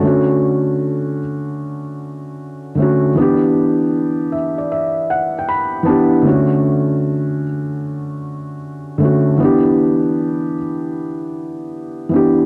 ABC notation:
X:1
M:4/4
L:1/16
Q:"Swing 16ths" 1/4=77
K:D
V:1 name="Felt piano"
[D,A,CF]6 z8 [D,A,CF]2 | [E,B,DG]6 e d e2 f g b2 [E,B,DGa]2 | [D,A,CF]6 z8 [D,A,CF]2 | [E,B,DG]6 z8 [E,B,DG]2 |]